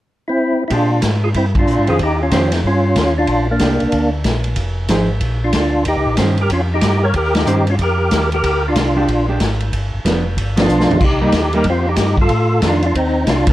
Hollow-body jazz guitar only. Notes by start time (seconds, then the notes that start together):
0.70 G#3 D4 G4
1.88 D#3 C#4 G4 C5
2.32 D#3 C#4 G4 C5
3.61 G#3 D4 G4
4.89 F3 D#4 G#4 C5
6.18 D#3 C#4 G4 C5
7.46 D#3 C#4 G4 C5
8.96 G#3 D4 G4
9.28 G#3 D4 G4
10.05 F3 B3 D4
10.56 F3 B3 D4
11.22 G3 A#3 D#4
11.54 G3 A#3 D#4
12.62 D#3 A3 D4